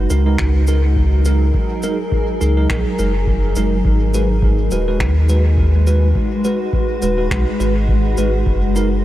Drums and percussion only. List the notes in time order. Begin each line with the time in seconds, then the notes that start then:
0.10 cabasa
0.38 finger snap, kick
0.67 cabasa
0.96 kick
1.25 cabasa
1.54 kick
1.83 cabasa
2.12 kick
2.41 cabasa
2.70 finger snap, kick
2.99 cabasa
3.27 kick
3.56 cabasa
3.85 kick
4.14 cabasa
4.42 kick
4.71 cabasa
5.00 finger snap, kick
5.29 cabasa
5.58 kick
5.87 cabasa
6.15 kick
6.44 cabasa
6.73 kick
7.02 cabasa
7.31 finger snap, kick
7.60 cabasa
7.89 kick
8.17 cabasa
8.46 kick
8.76 cabasa